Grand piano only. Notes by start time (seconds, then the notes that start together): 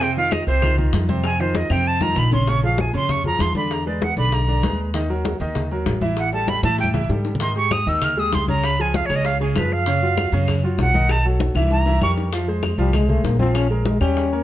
0.02 C3 C4 C5
0.17 D#3 D#4 F4
0.47 C3 C4 C5
0.63 D#3 D#4 F4
0.78 D#3 D#4 F4
1.08 C3 C4 C5
1.40 D#3 D#4 F4
1.70 C3 C4 C5
2.01 D#3 D#4 F4
2.32 C#3 C#4 C#5
2.48 C#3 C#4 C#5
2.63 F3 F4 G#4
2.94 C#3 C#4 C#5
3.25 F3 F4 G#4
3.56 D3 D4 D5
3.87 G#3 G#4 B4
4.17 D3 D4 D5
4.48 D3 D4 D5
4.63 G#3 G#4 B4
4.94 D#3 D#4 D#5
5.09 F#3 F#4 A#4
5.41 D#3 D#4 D#5
5.71 F#3 F#4 A#4
6.02 E3 E4 E5
6.33 G3 G4 A4
6.63 E3 E4 E5
6.94 E3 E4 E5
7.09 G3 G4 A4
7.40 D#3 D#4 D#5
7.56 G#3 G4 G#4
7.87 D#3 D#4 D#5
8.17 G#3 G4 G#4
8.48 C#3 C#4 C#5
8.79 F3 F4 G#4
9.10 C#3 C#4 C#5
9.41 C#3 C#4 C#5
9.56 F3 F4 G#4
9.87 C#3 C#4 C#5
10.02 F#3 F4 F#4
10.33 C#3 C#4 C#5
10.63 F#3 F4 F#4
10.94 D#3 D#4 D#5
11.25 F#3 F#4 A4
11.56 E3 E4 E5
11.87 E3 E4 E5
12.02 G3 G4 A#4
12.33 F3 F4 F5
12.48 G#3 G#4 C5
12.79 F3 F4 F5
12.94 G#3 G#4 C5
13.09 G#3 G#4 C5
13.40 F3 F4 F5
13.70 G#3 G#4 A#4
14.01 G3 G4 G5
14.33 A#3 A#4 C#5